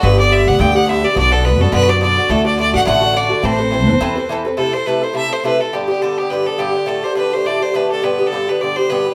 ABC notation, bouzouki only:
X:1
M:4/4
L:1/8
Q:"Swing" 1/4=210
K:Ador
V:1 name="Bouzouki"
[G,,D,B,G] [D,B,G] [G,,D,B,G] [D,B,G] [G,,D,B,G] [D,B,G] [G,,D,B,G] [D,B,G] | [B,,D,B,F] [D,B,F] [B,,D,B,F] [D,B,F] [B,,D,B,F] [D,B,F] [B,,D,B,F] [D,B,F] | [A,,D,A,F] [D,A,F] [A,,D,A,F] [D,A,F] [A,,D,A,F] [D,A,F] [A,,D,A,F] [D,A,F] | [E,CAB] [CAB] [E,CAB] [CAB] [E,CAB] [CAB] [E,CAB] [CAB] |
[C,A,EA] [A,EA] [C,A,EA] [A,EA] [C,A,EA] [A,EA] [C,A,EA] [A,EA] | [G,,D,B,G] [D,B,G] [G,,D,B,G] [D,B,G] [G,,D,B,G] [D,B,G] [G,,D,B,G] [D,B,G] | [A,,D,A,G] [D,A,G] [A,,D,A,G] [D,A,G] [A,,D,A,G] [D,A,G] [A,,D,A,G] [D,A,G] | [G,,D,B,G] [D,B,G] [G,,D,B,G] [D,B,G] [G,,D,B,G] [D,B,G] [G,,D,B,G] [D,B,G] |]